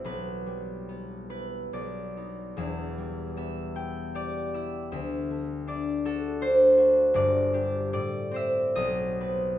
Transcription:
\new Staff \with { instrumentName = "Harp" } { \time 3/4 \key e \minor \tempo 4 = 76 << { <b' e''>4. b'8 d''4 | e''4 e''8 g''8 d''8 e''8 | e''4 d''8 a'8 c''4 | d''4 d''8 e''8 dis''4 | } \\ { <b,, e'>8 g8 b8 e'8 b,,8 <b dis'>8 | <e,, e,>8 g8 b8 e'8 g'8 e'8 | d,8 a8 d'8 fis'8 d'8 fis'8 | <g,, g,>8 <d' g'>8 a,8 <c' c''>8 b,,8 <c' b'>8 | } >> }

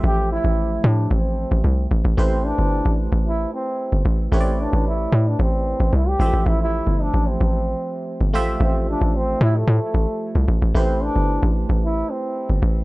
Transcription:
<<
  \new Staff \with { instrumentName = "FM electric piano" } { \time 4/4 \key a \minor \tempo 4 = 112 <f a g' c'' e''>2.~ <f a g' c'' e''>8 r8 | <a e' g' b' c''>1 | <a e' g' b' cis'' d''>2.~ <a e' g' b' cis'' d''>8 <f gis a g' c'' e''>8~ | <f gis a g' c'' e''>2.~ <f gis a g' c'' e''>8 <a f' g' c'' e''>8~ |
<a f' g' c'' e''>2.~ <a f' g' c'' e''>8 r8 | <a e' g' b' c''>1 | }
  \new Staff \with { instrumentName = "Trombone" } { \time 4/4 \key a \minor g'8 e'4 d'8 c'4. r8 | c'8 d'4 r8 e'8 c'4 r8 | c'8 d'8 e'8. d'16 c'4 e'16 g'8. | e'16 e'8. d'8 c'2 r8 |
c'8 d'8 c'8 e'16 a4.~ a16 r8 | c'8 d'4 r8 e'8 c'4 r8 | }
  \new Staff \with { instrumentName = "Log drum bass" } { \clef bass \time 4/4 \key a \minor a,,8. a,,8. a,8 a,,8. a,,16 c,8 a,,16 a,,16 | a,,8. g,,8 a,,8 a,,8. r8. g,,16 a,,8 | a,,8. a,,8. a,8 a,,8. a,,16 c,8 a,,16 a,,16 | a,,8. g,,8 a,,8 a,,8. r8. g,,16 a,,8 |
a,,8. a,,8. a,8 a,16 r16 a,,16 r8 c,16 a,,16 a,,16 | a,,8. g,,8 a,,8 a,,8. r8. g,,16 a,,8 | }
>>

